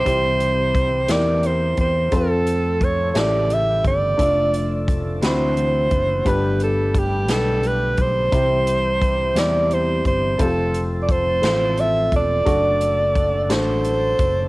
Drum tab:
HH |xxxxxx|xxxxxx|xxxxxx|xxxxxx|
SD |---o--|---o--|---o--|---o--|
BD |o-o--o|o-o--o|o-o--o|o-o--o|

HH |xxxxxx|xxxxxx|xxxxxx|
SD |---o--|---o--|---o--|
BD |o-o--o|o-o--o|o-o--o|